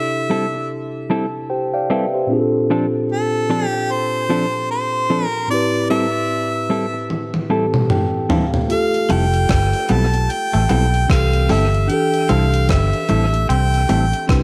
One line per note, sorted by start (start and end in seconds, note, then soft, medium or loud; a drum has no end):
0.00 2.24 C3 medium
0.00 2.25 D4 medium
0.00 2.26 E4 medium
0.00 1.06 G4 medium
0.00 1.07 A4 medium
0.00 0.70 E5 medium
0.30 0.45 G3 medium
0.30 0.45 C4 medium
0.30 0.45 E4 medium
0.30 0.45 A4 loud
0.54 muted clean electric guitar stroke soft
1.10 1.25 G3 medium
1.10 1.25 C4 medium
1.10 1.25 E4 medium
1.10 1.25 A4 loud
1.10 1.47 A5 medium
1.50 1.73 G4 medium
1.50 1.72 C5 medium
1.50 1.72 G5 medium
1.74 1.89 D5 medium
1.74 1.89 F5 medium
1.74 1.89 G5 medium
1.90 2.05 G3 medium
1.90 2.05 C4 medium
1.90 2.05 E4 medium
1.90 2.05 A4 medium
1.90 2.13 B4 medium
1.90 2.13 E5 medium
2.14 2.52 G4 medium
2.14 2.52 C5 medium
2.27 5.45 A#2 medium
2.27 5.45 C4 medium
2.27 5.46 D4 medium
2.32 5.47 F4 medium
2.32 2.39 G#4 medium
2.40 5.51 A4 medium
2.70 2.85 F3 medium
2.70 2.85 C4 medium
2.70 2.85 D4 medium
2.70 2.86 A4 medium
3.12 3.67 A4 medium
3.50 3.65 F3 medium
3.50 3.65 C4 medium
3.50 3.65 D4 medium
3.50 3.65 A4 medium
3.67 3.93 G4 medium
3.74 muted clean electric guitar stroke soft
3.92 4.70 C5 medium
4.29 4.45 F3 medium
4.29 4.45 C4 medium
4.29 4.45 D4 medium
4.29 4.45 A4 medium
4.71 5.26 C5 medium
5.10 5.25 F3 medium
5.10 5.25 C4 medium
5.10 5.25 D4 medium
5.10 5.25 A4 medium
5.26 5.46 A#4 medium
5.48 7.45 A2 medium
5.48 7.46 C4 medium
5.48 7.47 E4 medium
5.48 5.88 D5 loud
5.53 7.47 G4 medium
5.53 7.48 B4 medium
5.90 6.05 G3 medium
5.90 6.05 C4 medium
5.90 6.05 E4 medium
5.90 6.06 A4 medium
5.90 7.06 E5 loud
6.70 6.85 G3 medium
6.70 6.85 C4 medium
6.70 6.85 E4 medium
6.70 6.85 A4 medium
6.94 muted clean electric guitar stroke soft
7.10 high tom soft
7.34 high tom medium
7.49 8.70 A2 medium
7.49 8.70 E3 medium
7.49 7.65 G3 medium
7.49 8.70 C4 medium
7.49 7.65 C4 medium
7.49 7.65 E4 medium
7.49 8.70 G4 medium
7.49 7.65 A4 medium
7.49 8.71 A4 medium
7.49 7.87 A5 medium
7.74 mid tom medium
7.90 8.27 G5 medium
7.90 mid tom medium
8.29 8.45 G3 medium
8.29 8.45 C4 medium
8.29 8.45 E4 medium
8.29 8.45 A4 medium
8.29 8.68 F5 medium
8.29 floor tom loud
8.54 floor tom medium
8.67 11.04 A3 medium
8.67 11.05 F4 medium
8.67 11.06 G4 medium
8.67 closed hi-hat medium
8.71 11.07 A4 medium
8.71 9.08 F5 medium
8.94 closed hi-hat medium
9.09 9.48 F1 medium
9.09 9.34 F3 medium
9.09 9.25 G3 medium
9.09 9.25 C4 medium
9.09 9.25 E4 medium
9.09 9.25 A4 medium
9.09 9.93 G5 medium
9.09 closed hi-hat medium
9.34 closed hi-hat medium
9.49 9.72 G1 medium
9.49 9.64 G3 medium
9.49 kick loud
9.49 cross-stick loud
9.49 closed hi-hat medium
9.73 closed hi-hat soft
9.89 10.27 B1 medium
9.89 10.05 G3 medium
9.89 10.13 B3 medium
9.89 10.05 C4 medium
9.89 10.05 E4 medium
9.89 10.05 A4 medium
9.89 10.33 A5 loud
9.89 closed hi-hat medium
10.14 muted clean electric guitar stroke soft
10.14 closed hi-hat medium
10.30 11.10 G5 loud
10.30 closed hi-hat medium
10.54 10.69 A1 medium
10.54 10.63 A3 medium
10.54 closed hi-hat soft
10.69 11.08 B1 medium
10.69 10.85 G3 medium
10.69 10.93 B3 medium
10.69 10.85 C4 medium
10.69 10.85 E4 medium
10.69 10.85 A4 medium
10.69 closed hi-hat medium
10.94 closed hi-hat soft
11.08 11.47 C2 medium
11.08 11.88 E3 soft
11.08 11.89 C4 soft
11.08 11.34 C4 medium
11.08 11.90 G4 soft
11.08 11.91 A4 medium
11.08 11.47 F5 medium
11.08 kick loud
11.08 cross-stick loud
11.08 closed hi-hat medium
11.33 closed hi-hat medium
11.49 11.88 G1 medium
11.49 11.64 G3 medium
11.49 11.74 G3 medium
11.49 11.65 C4 medium
11.49 11.65 E4 medium
11.49 11.65 A4 medium
11.49 11.91 E5 medium
11.49 open hi-hat medium
11.74 closed hi-hat soft
11.88 14.25 E3 medium
11.88 14.24 D4 medium
11.88 14.26 G4 medium
11.88 12.32 G5 medium
11.88 closed hi-hat medium
11.93 14.27 A4 medium
12.14 closed hi-hat medium
12.29 12.67 C2 medium
12.29 12.45 G3 medium
12.29 12.53 C4 medium
12.29 12.45 C4 medium
12.29 12.45 E4 medium
12.29 12.45 A4 medium
12.29 12.70 F5 medium
12.29 closed hi-hat medium
12.54 closed hi-hat medium
12.69 12.92 G1 medium
12.69 12.84 G3 medium
12.69 13.46 E5 medium
12.69 kick loud
12.69 cross-stick loud
12.69 closed hi-hat medium
12.93 closed hi-hat soft
13.09 13.47 A1 medium
13.09 13.24 G3 medium
13.09 13.34 A3 medium
13.09 13.25 C4 medium
13.09 13.25 E4 medium
13.09 13.25 A4 medium
13.09 closed hi-hat medium
13.33 muted clean electric guitar stroke soft
13.33 closed hi-hat medium
13.49 13.87 C2 medium
13.49 13.73 C4 medium
13.49 14.25 G5 medium
13.49 closed hi-hat medium
13.74 closed hi-hat soft
13.89 14.12 A1 medium
13.89 14.04 G3 medium
13.89 14.04 A3 medium
13.89 14.04 C4 medium
13.89 14.05 E4 medium
13.89 14.05 A4 medium
13.89 closed hi-hat medium
14.13 closed hi-hat soft
14.27 14.43 C2 loud
14.27 14.43 C4 medium
14.27 14.43 D4 medium
14.27 14.43 E4 soft
14.27 14.43 G4 soft
14.27 14.43 B4 medium
14.27 kick loud
14.27 cross-stick loud
14.27 closed hi-hat medium